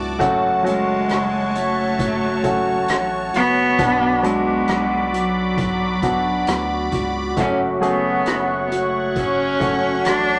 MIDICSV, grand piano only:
0, 0, Header, 1, 2, 480
1, 0, Start_track
1, 0, Key_signature, 3, "minor"
1, 0, Tempo, 895522
1, 109, Time_signature, 4, 2, 24, 8
1, 5570, End_track
2, 0, Start_track
2, 0, Title_t, "Grand piano"
2, 0, Program_c, 0, 0
2, 0, Control_c, 0, 64, 127
2, 0, Note_on_c, 0, 54, 53
2, 0, Note_on_c, 0, 59, 58
2, 0, Note_on_c, 0, 62, 59
2, 0, Note_on_c, 0, 64, 68
2, 70, Note_off_c, 0, 54, 0
2, 71, Note_off_c, 0, 59, 0
2, 72, Note_off_c, 0, 62, 0
2, 73, Note_off_c, 0, 64, 0
2, 100, Note_on_c, 0, 54, 73
2, 102, Note_on_c, 0, 57, 70
2, 104, Note_on_c, 0, 49, 63
2, 105, Note_on_c, 0, 61, 66
2, 105, Note_on_c, 0, 66, 97
2, 115, Control_c, 0, 64, 0
2, 222, Control_c, 0, 64, 127
2, 329, Note_off_c, 0, 54, 0
2, 333, Note_off_c, 0, 57, 0
2, 335, Note_off_c, 0, 61, 0
2, 335, Note_off_c, 0, 66, 0
2, 337, Note_on_c, 0, 54, 76
2, 343, Note_on_c, 0, 61, 69
2, 345, Note_on_c, 0, 66, 80
2, 805, Note_off_c, 0, 49, 0
2, 1255, Note_off_c, 0, 54, 0
2, 1258, Note_off_c, 0, 61, 0
2, 1259, Note_off_c, 0, 66, 0
2, 1302, Note_on_c, 0, 54, 53
2, 1307, Note_on_c, 0, 57, 56
2, 1308, Note_on_c, 0, 61, 49
2, 1310, Note_on_c, 0, 66, 65
2, 1989, Note_off_c, 0, 54, 0
2, 1992, Note_off_c, 0, 57, 0
2, 1992, Note_off_c, 0, 61, 0
2, 1993, Note_off_c, 0, 66, 0
2, 2028, Note_on_c, 0, 54, 70
2, 2028, Note_on_c, 0, 59, 57
2, 2030, Note_on_c, 0, 47, 59
2, 2032, Note_on_c, 0, 62, 62
2, 2032, Note_on_c, 0, 66, 80
2, 2036, Control_c, 0, 64, 0
2, 2132, Control_c, 0, 64, 127
2, 2256, Note_off_c, 0, 54, 0
2, 2256, Note_off_c, 0, 59, 0
2, 2258, Note_off_c, 0, 62, 0
2, 2258, Note_off_c, 0, 66, 0
2, 2264, Note_on_c, 0, 54, 68
2, 2267, Note_on_c, 0, 59, 62
2, 2268, Note_on_c, 0, 62, 63
2, 2271, Note_on_c, 0, 66, 83
2, 2728, Note_off_c, 0, 47, 0
2, 3178, Note_off_c, 0, 54, 0
2, 3180, Note_off_c, 0, 59, 0
2, 3180, Note_off_c, 0, 62, 0
2, 3182, Note_off_c, 0, 66, 0
2, 3229, Note_on_c, 0, 54, 56
2, 3234, Note_on_c, 0, 59, 53
2, 3236, Note_on_c, 0, 62, 54
2, 3237, Note_on_c, 0, 66, 63
2, 3913, Note_off_c, 0, 54, 0
2, 3915, Note_off_c, 0, 59, 0
2, 3916, Note_off_c, 0, 62, 0
2, 3917, Note_off_c, 0, 66, 0
2, 3949, Note_on_c, 0, 57, 58
2, 3950, Note_on_c, 0, 54, 67
2, 3951, Note_on_c, 0, 49, 49
2, 3953, Note_on_c, 0, 61, 57
2, 3956, Control_c, 0, 64, 0
2, 3956, Note_on_c, 0, 66, 66
2, 4034, Control_c, 0, 64, 127
2, 4175, Note_off_c, 0, 54, 0
2, 4177, Note_off_c, 0, 57, 0
2, 4179, Note_off_c, 0, 61, 0
2, 4180, Note_off_c, 0, 66, 0
2, 4183, Note_on_c, 0, 54, 64
2, 4187, Note_on_c, 0, 57, 63
2, 4189, Note_on_c, 0, 61, 67
2, 4190, Note_on_c, 0, 68, 85
2, 4648, Note_off_c, 0, 49, 0
2, 5098, Note_off_c, 0, 54, 0
2, 5100, Note_off_c, 0, 57, 0
2, 5101, Note_off_c, 0, 61, 0
2, 5101, Note_off_c, 0, 68, 0
2, 5142, Note_on_c, 0, 54, 52
2, 5144, Note_on_c, 0, 57, 56
2, 5147, Note_on_c, 0, 73, 52
2, 5148, Note_on_c, 0, 66, 62
2, 5570, Note_off_c, 0, 54, 0
2, 5570, Note_off_c, 0, 57, 0
2, 5570, Note_off_c, 0, 66, 0
2, 5570, Note_off_c, 0, 73, 0
2, 5570, End_track
0, 0, End_of_file